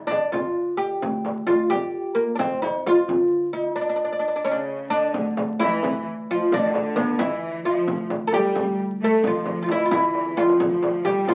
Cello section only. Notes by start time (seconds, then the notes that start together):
4.45 C#3
4.92 D3
5.62 E3
6.30 F3
6.54 D3
7.19 E3
7.63 F3
8.35 G3
9.01 A3
9.24 F3
9.69 E3
9.92 E3
10.37 F3
11.05 G3
11.27 F3